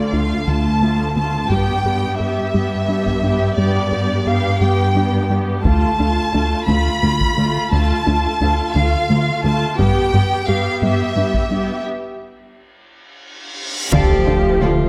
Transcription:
Already playing: cello section D2, viola section A3 F4, violin section D5
0.13 analog synth bass D2, viola section A3 F4, synth arpeggio sound D4, violin section F5
0.47 analog synth bass D2, cello section D2, synth arpeggio sound D3, viola section A3 F4, violin section A5
0.81 analog synth bass D3, viola section A3 F4, synth arpeggio sound A3
1.16 analog synth bass D3, synth arpeggio sound A3, viola section A3 F4, violin section A5
1.50 analog synth bass G2, cello section G2, synth arpeggio sound G3, viola section B3 G4, violin section G5, taiko
1.85 analog synth bass G2, viola section B3 G4, synth arpeggio sound G4
2.19 analog synth bass G2, viola section B3 G4, synth arpeggio sound G4, violin section E5
2.54 cello section G2, analog synth bass G2, synth arpeggio sound G3, viola section B3 G4
2.88 analog synth bass G3, viola section B3 G4, synth arpeggio sound D4
3.06 taiko
3.23 analog synth bass G3, viola section B3 G4, synth arpeggio sound D4
3.57 analog synth bass G2, cello section G2, synth arpeggio sound G3, viola section B3 G4, violin section D5
3.92 analog synth bass G2, viola section B3 G4, synth arpeggio sound G4
4.26 analog synth bass G2, viola section B3 G4, synth arpeggio sound G4, violin section F5
4.60 analog synth bass G2, cello section G2, synth arpeggio sound G3, viola section B3 G4, violin section G5
4.95 analog synth bass G3, viola section B3 G4, synth arpeggio sound D4
5.30 analog synth bass G3, viola section B3 G4, synth arpeggio sound D4
5.64 cello section D2, analog synth bass D2, synth arpeggio sound D3, viola section A3 F4, violin section A5, taiko
5.98 cello section D2, analog synth bass D2, viola section A3 F4, synth arpeggio sound D4
6.33 cello section D2, analog synth bass D2, viola section A3 F4, synth arpeggio sound D4
6.68 cello section D2, analog synth bass D2, synth arpeggio sound D3, viola section A3 F4, violin section B5
7.03 cello section D2, analog synth bass D3, viola section A3 F4, synth arpeggio sound A3
7.21 taiko
7.37 cello section D2, analog synth bass D3, synth arpeggio sound A3, viola section A3 F4
7.72 cello section D2, analog synth bass D2, synth arpeggio sound D3, viola section A3 F4, violin section A5
8.06 cello section D2, analog synth bass D2, viola section A3 F4, synth arpeggio sound D4
8.40 analog synth bass D2, cello section D2, viola section A3 F4, synth arpeggio sound D4
8.75 cello section D2, analog synth bass D2, synth arpeggio sound D3, viola section A3 F4, violin section F5
9.10 cello section D2, analog synth bass D3, synth arpeggio sound A3, viola section A3 F4
9.44 cello section D2, analog synth bass D3, viola section A3 F4, synth arpeggio sound A3, violin section A5
9.79 analog synth bass G2, cello section G2, synth arpeggio sound G3, viola section B3 G4, violin section G5, taiko
10.13 cello section G2, analog synth bass G2, viola section B3 G4, synth arpeggio sound G4
10.47 cello section G2, analog synth bass G2, viola section B3 G4, synth arpeggio sound G4, violin section F5
10.81 analog synth bass G2, cello section G2, synth arpeggio sound G3, viola section B3 G4, violin section E5
11.16 cello section G2, analog synth bass G3, viola section B3 G4, synth arpeggio sound D4
11.34 taiko
11.51 cello section G2, analog synth bass G3, viola section B3 G4, synth arpeggio sound D4
11.86 reverse cymbal
13.92 sub bass D1, double bass section D2, analog synth bass D2, cello section D3, synth arpeggio sound D3, viola section F3, trombone section F3 A3, cello G4, french horn section G4, violin section A4 D5 F5, taiko, impact
14.27 analog synth bass D2, double bass section D2, cello section D3, synth arpeggio sound D4, violin section F4 A4
14.61 double bass section D2, analog synth bass D3, cello section D3, synth arpeggio sound A3, cello F4, french horn section F4, violin section A4 D5

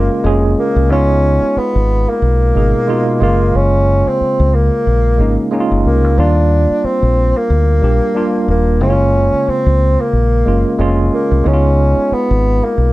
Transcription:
Already playing: tine electric piano C#3 G#3 A#3 C#4 F4, bassoon A#3
0.24 fingered electric bass F1, tine electric piano G#3 A#3 C#4 G#4
0.59 bassoon A#3
0.76 fingered electric bass C2
0.89 fingered electric bass C#2, tine electric piano G#3 B3 D#4 F4, bassoon C#4
1.42 muted fingered electric bass stroke
1.56 bassoon B3, muted fingered electric bass stroke
1.75 fingered electric bass G#1
2.10 bassoon A#3
2.22 fingered electric bass B1
2.55 fingered electric bass G#1, tine electric piano B2 G#3 D#4 G#4
2.87 tine electric piano B2 G#3 D#4 F4
3.20 fingered electric bass F#1, tine electric piano C#3 G#3 A#3 F4, bassoon A#3
3.55 fingered electric bass F#1, bassoon C#4
4.07 bassoon C4, muted fingered electric bass stroke
4.21 muted fingered electric bass stroke
4.40 fingered electric bass C#2
4.55 bassoon A#3
4.87 fingered electric bass A#1
5.18 fingered electric bass G#1, tine electric piano G#3 A#3 C#4 D#4
5.51 tine electric piano G#3 A#3 C#4 D#4
5.60 tine electric piano F4
5.71 fingered electric bass F#1
5.85 fingered electric bass C2, bassoon A#3
6.04 fingered electric bass C#2
6.17 fingered electric bass D#2, tine electric piano G3 A#3 D4 F4, bassoon D4
6.70 muted fingered electric bass stroke
6.84 bassoon C4, muted fingered electric bass stroke
7.03 fingered electric bass A#1
7.37 bassoon A#3
7.50 fingered electric bass D2
7.81 fingered electric bass A#1, tine electric piano G3 A#3 D4 G4
8.14 tine electric piano G3 A#3 D4 F4
8.48 fingered electric bass D#1, bassoon A#3
8.80 fingered electric bass F#1, tine electric piano C#3 G#3 A#3 E4, bassoon C#4
8.90 tine electric piano F4
9.33 muted fingered electric bass stroke
9.48 bassoon C4, muted fingered electric bass stroke
9.66 fingered electric bass C#2
10.01 bassoon A#3
10.13 fingered electric bass A#1
10.45 fingered electric bass F#1, tine electric piano G#3 A#3 C#4 F4
10.78 fingered electric bass F1, tine electric piano G#3 A#3 C#4 F4
11.14 bassoon A#3
11.31 fingered electric bass C2
11.44 fingered electric bass C#2, tine electric piano G#3 B3 D#4 E4, bassoon C#4
11.53 tine electric piano F4
11.98 muted fingered electric bass stroke
12.12 bassoon B3, muted fingered electric bass stroke
12.31 fingered electric bass G#1
12.64 bassoon A#3
12.78 fingered electric bass B1

